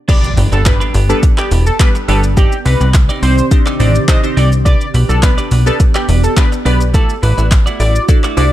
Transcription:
0.08 B3 D4 G4 B4 D5, kick, closed hi-hat, crash, impact, shaker
0.24 shaker
0.37 G1 B3 D4 G4 B4, open hi-hat, shaker
0.52 G1 B3 D4 G4 A4 B4, shaker
0.65 G3 B3 D4 G4 B4, muted clean electric guitar stroke, kick, clap, closed hi-hat, shaker
0.80 B3 D4 G4 B4, shaker
0.94 G1 B3 D4 G4 B4, open hi-hat, shaker
1.09 G3 B3 D4 G4 A4 B4, muted clean electric guitar stroke, shaker
1.23 muted clean electric guitar stroke, kick, closed hi-hat, shaker
1.38 B3 D4 G4 B4, clap, shaker
1.51 E1 B3 D4 G4 B4, open hi-hat, shaker
1.66 A4, muted clean electric guitar stroke, shaker
1.80 G3 B3 D4 G4 B4, muted clean electric guitar stroke, kick, clap, closed hi-hat, shaker
1.95 muted clean electric guitar stroke, shaker
2.08 G1 G3 B3 D4 G4 A4 B4, open hi-hat, shaker
2.23 muted clean electric guitar stroke, shaker
2.37 C3 D#3 C4 D#4 G4 D5, kick, closed hi-hat, shaker
2.52 shaker
2.65 C2 C4 D#4 G4 B4 D5, open hi-hat, shaker
2.81 C2 C4 D#4 G4 D5, shaker
2.94 kick, clap, closed hi-hat, shaker
3.09 C4 D#4 G4 D5, shaker
3.22 C2 C4 D#4 G4 C5 D5, open hi-hat, shaker
3.38 muted clean electric guitar stroke, shaker
3.51 C4 D4 D#4 G4 C5, muted clean electric guitar stroke, kick, closed hi-hat, shaker
3.66 C4 D#4 G4 D5, clap, shaker
3.79 A1 C4 D4 D#4 G4 C5 D5, open hi-hat, shaker
3.95 muted clean electric guitar stroke, shaker
4.08 C4 D4 D#4 G4 C5 D#5, muted clean electric guitar stroke, kick, clap, closed hi-hat, shaker
4.23 C4 D4 D#4 G4 C5, muted clean electric guitar stroke, shaker
4.37 C2 C4 D#4 G4 D5, open hi-hat, shaker
4.52 muted clean electric guitar stroke, shaker
4.65 B3 D4 G4 B4 D5, kick, closed hi-hat, shaker
4.81 shaker
4.94 B1 D4 G4 B4 D5, open hi-hat, shaker
5.09 B1 D4 G4 A4 B4 D5, shaker
5.23 B3 D4 G4 B4 D5, muted clean electric guitar stroke, kick, clap, closed hi-hat, shaker
5.38 D4 G4 B4 D5, shaker
5.51 B1 D4 G4 B4 D5, open hi-hat, shaker
5.66 B3 D4 G4 A4 B4 D5, muted clean electric guitar stroke, shaker
5.80 muted clean electric guitar stroke, kick, closed hi-hat, shaker
5.95 D4 G4 B4 D5, clap, shaker
6.08 E1 D4 G4 B4 D5, open hi-hat, shaker
6.24 A4, muted clean electric guitar stroke, shaker
6.37 B3 D4 G4 B4 D5, muted clean electric guitar stroke, kick, clap, closed hi-hat, shaker
6.52 muted clean electric guitar stroke, shaker
6.65 B1 B3 D4 G4 B4 D5, open hi-hat, shaker
6.80 muted clean electric guitar stroke, shaker
6.94 A3 E4 F#4 A4 D5, kick, closed hi-hat, shaker
7.09 shaker
7.22 A1 A3 E4 F#4 B4 D5, open hi-hat, shaker
7.37 A1 A3 E4 F#4 D5, shaker
7.51 muted clean electric guitar stroke, kick, clap, closed hi-hat, shaker
7.66 A3 E4 F#4 D5, shaker
7.80 A1 A3 E4 F#4 D5, open hi-hat, shaker
7.95 muted clean electric guitar stroke, shaker
8.08 D4 E4 F#4 A4 D5, muted clean electric guitar stroke, kick, closed hi-hat, shaker
8.24 A3 E4 F#4 D5, clap, shaker
8.37 C2 A3 D4 E4 F#4 A4 D5, open hi-hat, shaker

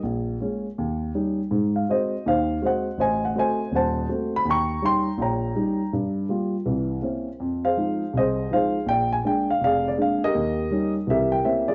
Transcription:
0.03 A#1
0.40 G#3 A#3 C#4
0.78 D#2
1.15 G3 C#4 D#4
1.51 G#2
1.76 F5
1.88 G#3 C4 F#4 C5 D#5
2.26 D#2 D#3 C5 F5
2.61 G#3 C4 F#4
2.65 C5 D#5 F#5
2.98 A1 C5 D#5 G#5
3.25 F#5
3.35 A3 C4 F#4 C5 D#5
3.39 G#5
3.71 D#1 F#5
3.75 C5 A5
4.09 A3 C4 F#4
4.36 B5
4.45 D#2
4.49 G5 A#5 C#6
4.82 G3 C#4 D#4 G5 C6
5.18 A#1 G5
5.22 C#5 A#5
5.55 G3 C#4 D#4
5.93 G2
6.29 G3 A#3 F4
6.66 C2 E3
7.02 A#3 C4 C#4 E4
7.40 F2
7.65 G#4 C5 F5
7.77 F3 G#3 D#4
8.13 C2
8.17 G#4 C5 D#5
8.51 F3 G#3 D#4 G#4 C5 F5
8.86 A#1 D5 G5
9.12 G#5
9.24 G#3 A#3 D4 G5
9.50 F5
9.61 F1 F5
9.65 G#4 D5
9.88 D5
9.97 G#3 A#3 D4
10.02 F5
10.24 G4 A#4 D#5
10.35 D#2
10.71 G3 C#4 D#4
11.07 C2 E3 G4 E5
11.11 A#4
11.32 G5
11.45 A#3 C4 C#4 E4 E5
11.68 F4 G#4 D5

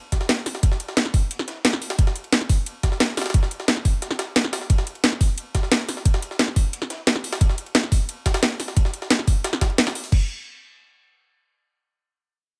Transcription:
0.12 kick, snare, closed hi-hat, ride
0.21 snare
0.29 snare, closed hi-hat, ride
0.46 snare, open hi-hat, ride
0.55 snare
0.63 kick, closed hi-hat, ride
0.72 snare
0.80 closed hi-hat, ride
0.89 snare
0.97 snare, closed hi-hat, ride
1.05 snare
1.14 kick, open hi-hat, ride
1.31 closed hi-hat, ride
1.39 snare
1.48 snare, closed hi-hat, ride
1.65 snare, closed hi-hat, ride
1.73 snare
1.82 open hi-hat, ride
1.90 snare, ride
1.99 kick, closed hi-hat, ride
2.07 snare
2.16 closed hi-hat, ride
2.24 ride
2.33 snare, closed hi-hat, ride
2.41 snare, ride
2.49 kick, open hi-hat
2.66 closed hi-hat, ride
2.83 kick, snare, closed hi-hat, ride
2.92 snare
3.00 snare, closed hi-hat, ride
3.17 snare, open hi-hat, ride
3.21 snare, ride
3.26 snare, ride
3.30 snare, ride
3.34 kick, closed hi-hat, ride
3.43 snare
3.51 closed hi-hat, ride
3.60 snare
3.68 snare, closed hi-hat, ride
3.77 snare
3.85 kick, open hi-hat, ride
4.02 snare, closed hi-hat, ride
4.11 snare
4.19 snare, closed hi-hat, ride
4.36 snare, closed hi-hat, ride
4.44 snare
4.53 snare, open hi-hat, ride
4.61 snare
4.70 kick, closed hi-hat, ride
4.78 snare
4.87 closed hi-hat, ride
4.95 ride
5.04 snare, closed hi-hat, ride
5.12 snare, ride
5.21 kick, open hi-hat
5.38 closed hi-hat, ride
5.55 kick, snare, closed hi-hat, ride
5.63 snare
5.72 snare, closed hi-hat, ride
5.89 snare, open hi-hat, ride
5.97 snare
6.05 kick, closed hi-hat, ride
6.14 snare
6.22 closed hi-hat, ride
6.31 snare
6.39 snare, closed hi-hat, ride
6.48 snare
6.56 kick, open hi-hat, ride
6.73 closed hi-hat, ride
6.82 snare
6.90 snare, closed hi-hat, ride
7.07 snare, closed hi-hat, ride
7.16 snare
7.24 open hi-hat, ride
7.33 snare, ride
7.41 kick, closed hi-hat, ride
7.49 snare
7.58 closed hi-hat, ride
7.66 ride
7.75 snare, closed hi-hat, ride
7.83 snare, ride
7.92 kick, open hi-hat
8.09 closed hi-hat, ride
8.26 kick, snare, closed hi-hat, ride
8.34 snare, ride
8.43 snare, closed hi-hat, ride
8.60 snare, open hi-hat, ride
8.68 snare
8.77 kick, closed hi-hat, ride
8.85 snare
8.94 closed hi-hat, ride
9.02 snare
9.10 snare, closed hi-hat, ride
9.19 snare
9.27 kick, open hi-hat, ride
9.44 snare, closed hi-hat, ride
9.53 snare, ride
9.61 kick, snare, closed hi-hat, ride
9.70 ride
9.78 snare, closed hi-hat, open hi-hat
9.87 snare, ride
9.95 open hi-hat, ride
10.04 open hi-hat
10.12 kick, crash

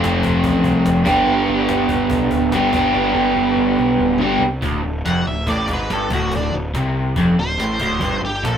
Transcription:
Already playing: F2 C3 F3 A3 C4 F4
0.04 F1, cajon slap
0.23 F1, cajon bass
0.44 A1, cajon bass
0.64 C2, cajon bass
0.86 F1, cajon slap
0.96 cajon slap
1.04 G1 G2 D3 G3 B3 D4 G4, cajon bass
1.27 G1, cajon slap
1.47 G1, cajon slap
1.69 G1, cajon slap
1.89 G1, cajon bass
2.10 B1, cajon bass
2.31 D1, cajon bass
2.52 G1 G2 D3 G3 B3 D4 G4, cajon slap
2.63 cajon slap
2.72 G1 G2 D3 G3 B3 D4 G4, cajon bass
2.94 G1, cajon slap
3.14 G1, cajon slap
3.36 G1, cajon slap
3.57 G1, cajon slap
3.78 B1, cajon slap
3.99 D1, cajon slap
4.20 G1 G2 D3 G3 B3 D4 G4, cajon slap
4.39 C2, cajon slap
4.62 D1 D2, cajon bass
4.84 D1 D2
5.04 F1 F2 F#5, cajon slap
5.26 D1 D2 E5
5.47 A1 A2 D5, cajon bass
5.68 G#1 G#2, cajon bass
5.73 B4
5.90 G1 G2 A4, cajon slap
6.10 D1 D2 F#4, cajon bass
6.32 cajon bass
6.36 D4
6.53 D1 D2
6.74 C2 C3, cajon slap
7.16 F1 F2, cajon bass
7.37 D1 D2 C5
7.57 A1 A2, cajon slap
7.80 D1 D2, cajon bass
8.01 G1 G2, cajon bass
8.22 G1 G2 G4
8.43 A#1 A#2 A4, cajon slap

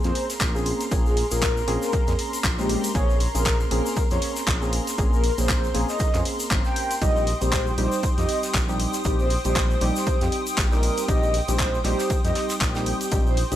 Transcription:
Already playing: A#4 A#5 C6
0.03 F2 A#3 C4 C#4 G#4 C5, snare, closed hi-hat, shaker
0.15 closed hi-hat, open hi-hat
0.30 snare, closed hi-hat, shaker
0.40 A#1, kick, snare, clap, closed hi-hat, shaker
0.55 A#3 C4 C#4 G#4, shaker
0.66 closed hi-hat, open hi-hat
0.81 snare, closed hi-hat, shaker
0.91 A#1 A#3 C4 C#4 G#4, kick, closed hi-hat, shaker
1.06 G#4, shaker
1.17 closed hi-hat, open hi-hat
1.31 A#1 A#3 C4 C#4 G#4 A#4, closed hi-hat, shaker
1.42 kick, snare, clap, closed hi-hat, shaker
1.57 shaker
1.67 A#1 A#3 C4 C#4 G#4, snare, closed hi-hat, open hi-hat
1.82 A#4, snare, shaker
1.92 kick, closed hi-hat, shaker
2.07 F2 A#3 C4 C#4 G#4, snare, closed hi-hat, shaker
2.19 closed hi-hat, open hi-hat
2.33 closed hi-hat, shaker
2.44 A#1, kick, snare, clap, closed hi-hat
2.57 G#3 A#3 C4 C#4 G4, snare, shaker
2.69 closed hi-hat, open hi-hat
2.84 closed hi-hat, shaker
2.95 A#1 A#3 C4 C#4 G#4 C#5, kick, closed hi-hat, shaker
3.09 shaker
3.20 closed hi-hat, open hi-hat
3.34 A#1 A#3 C4 C#4 G#4 A#4, closed hi-hat, shaker
3.45 kick, snare, clap, closed hi-hat, shaker
3.60 shaker
3.71 A#1 A#3 C4 C#4 G#4 A#4, closed hi-hat, open hi-hat
3.86 shaker
3.96 kick, closed hi-hat, shaker
4.11 F2 A#3 C4 C#4 G#4 C#5, snare, closed hi-hat, shaker
4.22 closed hi-hat, open hi-hat
4.36 snare, closed hi-hat, shaker
4.47 A#1, kick, snare, clap, closed hi-hat, shaker
4.62 A#3 C4 C#4 G#4, shaker
4.73 closed hi-hat, open hi-hat
4.87 snare, closed hi-hat, shaker
4.98 A#1 A#3 C4 C#4 G#4, kick, closed hi-hat, shaker
5.13 A#4, shaker
5.24 closed hi-hat, open hi-hat
5.38 A#1 A#3 C4 C#4 G#4 C5, closed hi-hat, shaker
5.49 kick, snare, clap, closed hi-hat, shaker
5.64 shaker
5.74 A#1 A#3 C4 C#4 G#4, snare, closed hi-hat, open hi-hat
5.89 D#5, snare, shaker
5.99 kick, closed hi-hat, shaker
6.14 F2 A#3 C4 C#4 G#4, snare, clap, closed hi-hat, shaker
6.25 closed hi-hat, open hi-hat
6.39 closed hi-hat, shaker
6.50 G#1 A#3 C4 C#4 C5, kick, snare, clap, closed hi-hat, shaker
6.64 G5, snare, shaker
6.76 closed hi-hat, open hi-hat
6.91 closed hi-hat, shaker
7.01 A#1 G3 C4 D#4 G4 D#5 G5 D#6, kick, closed hi-hat, shaker
7.16 shaker
7.27 closed hi-hat, open hi-hat
7.41 A#1 G3 C4 D#4 G4 C5, closed hi-hat, shaker
7.52 kick, snare, clap, closed hi-hat, shaker
7.67 shaker
7.78 A#1 G3 C4 D#4 G4 C5, closed hi-hat, open hi-hat
7.92 shaker
8.03 kick, closed hi-hat, shaker
8.18 F2 G3 C4 D#4 G4 D#5, snare, closed hi-hat, shaker
8.29 closed hi-hat, open hi-hat
8.43 snare, closed hi-hat, shaker
8.54 A#1, kick, snare, clap, closed hi-hat, shaker
8.68 G3 C4 D#4 G4, shaker
8.80 closed hi-hat, open hi-hat
8.93 snare, closed hi-hat, shaker
9.04 A#1 G3 C4 D#4 G4, kick, closed hi-hat, shaker
9.19 C5, shaker
9.30 closed hi-hat, open hi-hat
9.45 A#1 G3 C4 D#4 G4 C5, closed hi-hat, shaker
9.56 kick, snare, clap, closed hi-hat, shaker
9.70 shaker
9.81 A#1 G3 C4 D#4 G4, snare, closed hi-hat, open hi-hat
9.96 C5, snare, shaker
10.07 kick, closed hi-hat, shaker
10.21 F2 G3 C4 D#4 G4, snare, closed hi-hat, shaker
10.32 closed hi-hat, open hi-hat
10.47 closed hi-hat, shaker
10.57 A#1, kick, snare, clap, closed hi-hat, shaker
10.72 G3 C4 D#4 G4 A#4, snare, shaker
10.83 closed hi-hat, open hi-hat
10.98 closed hi-hat, shaker
11.08 A#1 G3 C4 D#4 G4 D#5, kick, closed hi-hat, shaker
11.23 shaker
11.34 closed hi-hat, open hi-hat
11.48 A#1 G3 C4 D#4 G4 C5, closed hi-hat, shaker
11.59 kick, snare, clap, closed hi-hat, shaker
11.74 shaker
11.84 A#1 G3 C4 D#4 G4 C5, snare, closed hi-hat, open hi-hat
11.99 snare, closed hi-hat, shaker
12.10 kick, closed hi-hat, shaker
12.24 F2 G3 C4 D#4 G4 D#5, snare, closed hi-hat, shaker
12.35 snare, closed hi-hat, open hi-hat
12.49 snare, closed hi-hat, shaker
12.61 A#1, kick, snare, clap, closed hi-hat, shaker
12.75 G3 C4 D#4 G4, snare, closed hi-hat, shaker
12.86 closed hi-hat, open hi-hat
13.01 closed hi-hat, shaker
13.11 A#1 G3 C4 D#4 G4, kick, closed hi-hat, shaker
13.26 C5, shaker
13.37 closed hi-hat, open hi-hat
13.51 A#1 G3 C4 D#4 G4 C5, closed hi-hat, shaker

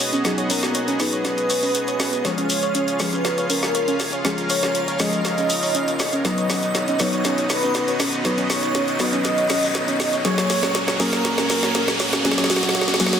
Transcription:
Already playing: F#3 B3 D#4 F#4 G#4 D#5, riser
0.00 open hi-hat, shekere
0.13 C#4, closed hi-hat, shekere
0.25 F#3 B3 D#4 G#4, snare, closed hi-hat, shekere
0.38 C#5, closed hi-hat, shekere
0.50 C#4 A#4, open hi-hat, shekere
0.63 snare, shekere
0.75 C#5, closed hi-hat, shekere
0.88 C#4, closed hi-hat, shekere
1.00 F#3 B3 D#4 G#4 B4, snare, open hi-hat, shekere
1.13 C#5, closed hi-hat, shekere
1.25 C#4, snare, closed hi-hat, shekere
1.37 closed hi-hat, shekere
1.50 C#5, open hi-hat, shekere
1.62 C#4, open hi-hat, shekere
1.75 closed hi-hat, shekere
1.87 C#5, closed hi-hat, shekere
2.00 C#4, snare, open hi-hat, shekere
2.13 closed hi-hat, shekere
2.25 F3 G#3 C#4 F4 G#4 C#5 F5, snare, closed hi-hat, shekere
2.38 C#4, closed hi-hat, shekere
2.50 open hi-hat, shekere
2.62 C#5, closed hi-hat, shekere
2.75 C#4, closed hi-hat, shekere
2.88 closed hi-hat, shekere
3.00 F3 G#3 C#4 G#4 B4 C#5, snare, open hi-hat, shekere
3.13 C#4, closed hi-hat, shekere
3.25 snare, closed hi-hat, shekere
3.38 C#5, closed hi-hat, shekere
3.50 C#4 A#4, open hi-hat, shekere
3.63 snare, shekere
3.75 C#5, closed hi-hat, shekere
3.88 C#4, closed hi-hat, shekere
4.00 snare, open hi-hat, shekere
4.12 C#5, closed hi-hat, shekere
4.25 F3 G#3 C#4 G#4 A#4, snare, closed hi-hat, shekere
4.38 closed hi-hat, shekere
4.50 C#5, open hi-hat, shekere
4.63 C#4, snare, closed hi-hat, shekere
4.74 closed hi-hat, shekere
4.88 C#5, closed hi-hat, shekere
4.99 F3 G#3 C#4 G#4 D#5, snare, open hi-hat, shekere
5.13 closed hi-hat, shekere
5.25 C#5, snare, closed hi-hat, shekere
5.37 C#4, closed hi-hat, shekere
5.50 open hi-hat, shekere
5.63 C#5, open hi-hat, shekere
5.75 C#4, closed hi-hat, shekere
5.88 closed hi-hat, shekere
5.99 C#5, snare, open hi-hat, shekere
6.12 C#4, closed hi-hat, shekere
6.25 F#3 B3 D#4 F#4 B4 D#5, snare, closed hi-hat, shekere
6.38 C#5, closed hi-hat, shekere
6.50 C#4, snare, open hi-hat, shekere
6.62 closed hi-hat, shekere
6.74 C#5, snare, closed hi-hat, shekere
6.88 C#4, closed hi-hat, shekere
6.99 F#3 B3 D#4 B4 C#5, snare, open hi-hat, shekere
7.13 C#5, closed hi-hat, shekere
7.24 C#4, snare, closed hi-hat, shekere
7.38 closed hi-hat, shekere
7.50 B4 C#5, snare, open hi-hat, shekere
7.63 C#4, closed hi-hat, shekere
7.74 snare, closed hi-hat, shekere
7.87 C#5, closed hi-hat, shekere
8.00 C#4, snare, open hi-hat, shekere
8.13 closed hi-hat, shekere
8.24 F#3 B3 D#4 B4 C#5, snare, closed hi-hat, shekere
8.38 C#4, closed hi-hat, shekere
8.50 C#5, snare, open hi-hat, shekere
8.63 C#5, closed hi-hat, shekere
8.75 C#4, snare, closed hi-hat, shekere
8.88 closed hi-hat, shekere
8.99 F#3 B3 D#4 B4 C#5 D#5, snare, open hi-hat, shekere
9.13 C#4, closed hi-hat, shekere
9.24 snare, closed hi-hat, shekere
9.38 C#5, closed hi-hat, shekere
9.49 C#4, snare, open hi-hat, shekere
9.63 open hi-hat, shekere
9.74 C#5, snare, closed hi-hat, shekere
9.88 C#4, closed hi-hat, shekere
10.00 snare, open hi-hat, shekere
10.13 C#5, closed hi-hat, shekere
10.24 F#3 A#3 C#4 F#4 G#4 C#5, snare, closed hi-hat, shekere
10.38 snare, closed hi-hat, shekere
10.50 C#5, snare, open hi-hat, shekere
10.63 C#4, snare, shekere
10.74 snare, closed hi-hat, shekere
10.88 C#5, snare, closed hi-hat, shekere
11.00 F#3 A#3 C#4 G#4 A#4, snare, open hi-hat, shekere
11.13 snare, shekere
11.25 C#5, snare, closed hi-hat, shekere
11.38 C#4, snare, closed hi-hat, shekere
11.49 A#4, snare, open hi-hat, shekere
11.63 C#5, snare, shekere
11.75 C#4, snare, closed hi-hat, shekere
11.88 snare, closed hi-hat, shekere
12.00 C#5, snare, open hi-hat, shekere
12.13 C#4, snare, shekere
12.25 F#3 A#3 C#4 G#4 D#5, snare, closed hi-hat, shekere
12.31 snare
12.38 C#5, snare, closed hi-hat, shekere
12.44 snare
12.50 C#4 F#4, snare, open hi-hat, shekere
12.56 snare
12.63 snare, closed hi-hat, shekere
12.69 snare
12.75 C#5, snare, closed hi-hat, shekere
12.81 snare
12.88 C#4, snare, closed hi-hat, shekere
12.94 snare
13.00 F#3 A#3 C#4 F#4 G#4, snare, open hi-hat, shekere
13.06 snare
13.13 C#5, snare, closed hi-hat, shekere

